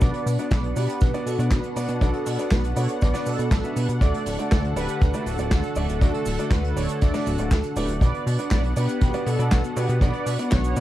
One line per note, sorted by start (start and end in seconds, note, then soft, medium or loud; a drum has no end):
0.00 0.13 B1 loud
0.00 3.97 B3 medium
0.00 0.27 B3 medium
0.00 7.98 D4 medium
0.00 0.27 D4 medium
0.00 0.27 F#4 medium
0.00 0.48 B4 medium
0.00 0.27 D5 loud
0.00 0.51 D5 loud
0.00 7.98 F#5 medium
0.00 kick loud
0.00 closed hi-hat medium
0.00 cabasa medium
0.14 closed hi-hat medium
0.26 0.38 B2 loud
0.26 open hi-hat loud
0.26 cabasa medium
0.39 0.74 B3 medium
0.39 0.74 D4 medium
0.39 0.74 F#4 medium
0.39 0.74 D5 medium
0.39 closed hi-hat medium
0.39 cabasa soft
0.51 0.74 B1 medium
0.51 0.75 B4 medium
0.51 0.77 D5 loud
0.51 kick loud
0.51 snare loud
0.51 clap loud
0.51 closed hi-hat medium
0.51 cabasa medium
0.64 closed hi-hat medium
0.76 0.88 B2 medium
0.76 1.11 B3 medium
0.76 1.11 D4 medium
0.76 1.23 G4 medium
0.76 1.28 B4 loud
0.76 1.11 D5 medium
0.76 1.11 F#5 medium
0.76 open hi-hat loud
0.76 cabasa medium
0.89 closed hi-hat medium
0.89 cabasa soft
1.01 1.13 B1 medium
1.01 kick loud
1.01 closed hi-hat medium
1.01 cabasa medium
1.14 1.30 B3 loud
1.14 1.30 D4 medium
1.14 1.30 F#4 medium
1.14 1.30 D5 loud
1.14 closed hi-hat medium
1.14 cabasa soft
1.26 1.38 B2 medium
1.26 1.38 F#4 medium
1.26 1.38 A4 medium
1.26 open hi-hat loud
1.26 cabasa medium
1.39 1.50 B2 loud
1.39 1.55 B3 medium
1.39 1.55 D4 medium
1.39 1.55 F#4 medium
1.39 1.55 D5 medium
1.39 closed hi-hat medium
1.39 cabasa soft
1.51 1.63 B1 medium
1.51 1.87 F#4 medium
1.51 1.87 B4 medium
1.51 kick loud
1.51 snare loud
1.51 clap loud
1.51 closed hi-hat medium
1.51 cabasa medium
1.64 closed hi-hat medium
1.64 cabasa soft
1.76 1.88 B2 loud
1.76 1.98 B3 loud
1.76 1.98 D4 medium
1.76 1.98 F#4 medium
1.76 1.98 D5 loud
1.76 open hi-hat loud
1.76 cabasa medium
1.88 2.00 B2 medium
1.88 closed hi-hat medium
1.88 cabasa soft
2.01 2.13 B1 loud
2.01 2.27 B3 medium
2.01 2.27 D4 medium
2.01 2.27 F#4 medium
2.01 2.49 F#4 medium
2.01 2.53 A4 loud
2.01 2.27 D5 medium
2.01 kick loud
2.01 closed hi-hat medium
2.01 cabasa soft
2.14 closed hi-hat medium
2.26 2.38 B2 loud
2.26 open hi-hat loud
2.26 cabasa medium
2.39 2.73 B3 medium
2.39 2.74 D4 medium
2.39 2.73 F#4 medium
2.39 2.73 D5 medium
2.39 closed hi-hat medium
2.39 cabasa soft
2.51 2.74 B1 medium
2.51 2.75 F#4 medium
2.51 2.77 B4 medium
2.51 kick loud
2.51 snare loud
2.51 clap medium
2.51 closed hi-hat medium
2.51 cabasa medium
2.64 closed hi-hat medium
2.64 cabasa soft
2.76 2.88 B2 medium
2.76 3.11 B3 medium
2.76 3.11 D4 medium
2.76 3.11 F#4 medium
2.76 3.00 A4 medium
2.76 3.02 C#5 loud
2.76 3.11 D5 medium
2.76 open hi-hat loud
2.76 cabasa medium
2.89 closed hi-hat medium
2.89 cabasa medium
3.01 3.13 B1 medium
3.01 3.25 B4 medium
3.01 3.27 D5 loud
3.01 kick loud
3.01 closed hi-hat medium
3.01 cabasa medium
3.13 3.30 B3 loud
3.13 3.30 D4 medium
3.13 3.30 F#4 medium
3.13 3.30 D5 loud
3.13 snare soft
3.13 open hi-hat medium
3.13 cabasa medium
3.26 3.38 B2 medium
3.26 3.73 F#4 medium
3.26 3.78 A4 loud
3.26 open hi-hat loud
3.26 cabasa medium
3.39 3.50 B2 loud
3.39 closed hi-hat medium
3.39 cabasa soft
3.51 3.63 B1 medium
3.51 kick loud
3.51 snare loud
3.51 clap loud
3.51 closed hi-hat medium
3.51 cabasa medium
3.64 3.80 B3 medium
3.64 3.80 D4 medium
3.64 3.80 F#4 medium
3.64 3.80 E5 medium
3.64 closed hi-hat soft
3.64 cabasa soft
3.76 3.88 B2 medium
3.76 3.88 G4 medium
3.76 3.87 B4 medium
3.76 open hi-hat loud
3.76 cabasa medium
3.89 4.00 B2 medium
3.89 closed hi-hat medium
3.89 cabasa medium
4.01 4.13 D2 medium
4.01 7.97 D3 medium
4.01 4.27 A3 medium
4.01 4.27 D4 medium
4.01 4.27 F#4 medium
4.01 7.97 A4 loud
4.01 4.48 A4 medium
4.01 4.48 D5 loud
4.01 4.27 D5 medium
4.01 kick loud
4.01 closed hi-hat medium
4.01 cabasa medium
4.14 closed hi-hat medium
4.26 4.38 D1 loud
4.26 open hi-hat loud
4.26 cabasa medium
4.39 4.73 A3 medium
4.39 4.73 D4 medium
4.39 4.73 F#4 medium
4.39 4.73 D5 medium
4.39 closed hi-hat medium
4.39 cabasa soft
4.51 4.74 D2 medium
4.51 4.63 A4 medium
4.51 4.63 D5 medium
4.51 kick loud
4.51 snare loud
4.51 clap medium
4.51 closed hi-hat medium
4.51 cabasa medium
4.64 closed hi-hat soft
4.76 4.88 D1 medium
4.76 5.11 A3 medium
4.76 5.11 D4 medium
4.76 5.23 G4 medium
4.76 5.23 B4 loud
4.76 5.11 D5 medium
4.76 5.11 F#5 medium
4.76 open hi-hat loud
4.76 cabasa medium
4.89 closed hi-hat medium
4.89 cabasa medium
5.01 5.13 D2 medium
5.01 kick loud
5.01 closed hi-hat medium
5.01 cabasa medium
5.14 5.30 A3 loud
5.14 5.30 D4 medium
5.14 5.30 F#4 medium
5.14 5.30 D5 loud
5.14 closed hi-hat medium
5.14 cabasa medium
5.26 5.38 D1 medium
5.26 5.50 F#4 medium
5.26 5.50 A4 medium
5.26 open hi-hat loud
5.26 cabasa medium
5.38 5.50 D1 loud
5.38 5.55 A3 medium
5.38 5.55 D4 medium
5.38 5.55 F#4 medium
5.38 5.55 D5 medium
5.38 closed hi-hat soft
5.38 cabasa medium
5.51 5.63 D2 medium
5.51 5.87 F#4 medium
5.51 5.86 A4 medium
5.51 kick loud
5.51 snare loud
5.51 clap loud
5.51 closed hi-hat medium
5.51 cabasa medium
5.63 closed hi-hat medium
5.63 cabasa soft
5.76 5.88 D1 loud
5.76 5.98 A3 medium
5.76 5.98 D4 medium
5.76 5.98 F#4 medium
5.76 5.98 D5 loud
5.76 open hi-hat loud
5.76 cabasa medium
5.89 6.00 D1 medium
5.89 closed hi-hat medium
5.89 cabasa medium
6.01 6.13 D2 medium
6.01 6.27 A3 medium
6.01 6.27 D4 medium
6.01 6.27 F#4 medium
6.01 6.48 F#4 medium
6.01 6.53 A4 loud
6.01 6.27 D5 loud
6.01 kick loud
6.01 closed hi-hat medium
6.01 cabasa medium
6.14 closed hi-hat medium
6.25 6.38 D1 loud
6.25 open hi-hat loud
6.25 cabasa medium
6.39 6.73 A3 medium
6.39 6.73 D4 medium
6.39 6.73 F#4 medium
6.39 6.73 D5 medium
6.39 closed hi-hat medium
6.39 cabasa medium
6.51 6.74 D2 medium
6.51 6.75 F#4 medium
6.51 6.77 B4 loud
6.51 kick loud
6.51 snare loud
6.51 clap loud
6.51 closed hi-hat medium
6.51 cabasa medium
6.65 closed hi-hat medium
6.76 6.88 D1 medium
6.76 7.11 A3 medium
6.76 7.11 D4 medium
6.76 7.11 F#4 medium
6.76 7.00 A4 medium
6.76 7.00 C#5 loud
6.76 7.11 D5 medium
6.76 open hi-hat loud
6.76 cabasa medium
6.88 closed hi-hat medium
6.88 cabasa soft
7.01 7.13 D2 medium
7.01 7.25 A4 medium
7.01 7.27 D5 loud
7.01 kick loud
7.01 closed hi-hat medium
7.01 cabasa medium
7.14 7.30 A3 loud
7.14 7.30 D4 medium
7.14 7.30 F#4 medium
7.14 7.30 D5 loud
7.14 snare soft
7.14 open hi-hat medium
7.14 cabasa soft
7.26 7.38 D1 medium
7.26 7.74 F#4 medium
7.26 7.78 A4 loud
7.26 open hi-hat loud
7.26 cabasa medium
7.38 7.50 D1 loud
7.38 7.55 A3 medium
7.38 7.55 D4 medium
7.38 7.55 F#4 medium
7.38 7.55 D5 medium
7.38 closed hi-hat medium
7.38 cabasa medium
7.51 7.63 D2 medium
7.51 kick loud
7.51 snare loud
7.51 clap loud
7.51 closed hi-hat medium
7.51 cabasa medium
7.63 closed hi-hat medium
7.63 cabasa soft
7.76 7.88 D1 loud
7.76 7.98 A3 medium
7.76 7.98 D4 medium
7.76 7.98 F#4 medium
7.76 7.88 G4 medium
7.76 7.88 B4 medium
7.76 7.98 D5 loud
7.76 open hi-hat loud
7.76 cabasa medium
7.88 8.00 D1 medium
7.88 closed hi-hat medium
7.88 cabasa medium
8.01 8.13 B1 medium
8.01 8.27 B3 medium
8.01 10.80 B3 medium
8.01 8.27 D4 medium
8.01 10.80 D4 medium
8.01 8.27 F#4 medium
8.01 8.48 B4 medium
8.01 8.51 D5 loud
8.01 8.27 D5 medium
8.01 10.80 F#5 loud
8.01 kick loud
8.01 closed hi-hat medium
8.01 cabasa medium
8.14 closed hi-hat medium
8.26 8.38 B2 loud
8.26 open hi-hat loud
8.26 cabasa medium
8.39 8.73 B3 medium
8.39 8.73 D4 medium
8.39 8.73 F#4 medium
8.39 8.73 D5 medium
8.39 closed hi-hat medium
8.39 cabasa soft
8.51 8.74 B1 medium
8.51 8.64 B4 medium
8.51 8.63 D5 loud
8.51 kick loud
8.51 snare loud
8.51 clap loud
8.51 closed hi-hat medium
8.51 cabasa medium
8.64 closed hi-hat medium
8.76 8.88 B2 medium
8.76 9.11 B3 medium
8.76 9.11 D4 medium
8.76 9.23 G4 medium
8.76 9.28 B4 loud
8.76 9.11 D5 medium
8.76 9.11 F#5 medium
8.76 open hi-hat loud
8.76 cabasa medium
8.89 closed hi-hat medium
8.89 cabasa medium
9.01 9.13 B1 medium
9.01 kick loud
9.01 closed hi-hat medium
9.01 cabasa medium
9.14 9.30 B3 loud
9.14 9.30 D4 loud
9.14 9.30 F#4 medium
9.14 9.30 D5 loud
9.14 closed hi-hat medium
9.14 cabasa soft
9.26 9.38 B2 medium
9.26 9.73 F#4 medium
9.26 9.78 A4 loud
9.26 open hi-hat loud
9.26 cabasa medium
9.39 9.50 B2 loud
9.39 9.55 B3 medium
9.39 9.55 D4 medium
9.39 9.55 F#4 medium
9.39 9.55 D5 medium
9.39 closed hi-hat medium
9.39 cabasa medium
9.51 9.63 B1 medium
9.51 kick loud
9.51 snare loud
9.51 clap loud
9.51 closed hi-hat medium
9.51 cabasa medium
9.64 closed hi-hat medium
9.64 cabasa soft
9.76 9.88 B2 loud
9.76 9.99 B3 medium
9.76 9.99 D4 medium
9.76 9.99 F#4 medium
9.76 10.00 G4 medium
9.76 10.01 B4 loud
9.76 9.99 D5 loud
9.76 open hi-hat loud
9.76 cabasa medium
9.89 10.00 B2 loud
9.89 closed hi-hat medium
9.89 cabasa soft
10.01 10.13 B1 loud
10.01 10.27 B3 medium
10.01 10.27 D4 medium
10.01 10.27 F#4 medium
10.01 10.48 B4 medium
10.01 10.27 D5 medium
10.01 10.53 D5 loud
10.01 kick loud
10.01 closed hi-hat medium
10.01 cabasa medium
10.13 closed hi-hat medium
10.26 10.38 B2 loud
10.26 open hi-hat loud
10.26 cabasa medium
10.39 10.74 B3 medium
10.39 10.73 D4 medium
10.39 10.73 F#4 medium
10.39 10.74 D5 medium
10.39 closed hi-hat medium
10.39 cabasa soft
10.51 10.74 B1 medium
10.51 10.80 F#4 medium
10.51 10.80 C#5 loud
10.51 kick loud
10.51 snare loud
10.51 clap loud
10.51 closed hi-hat medium
10.51 cabasa medium
10.64 closed hi-hat medium
10.64 cabasa soft
10.76 10.80 B2 medium
10.76 10.80 B3 medium
10.76 10.80 D4 medium
10.76 10.80 F#4 medium
10.76 10.80 D5 medium
10.76 open hi-hat loud
10.76 cabasa medium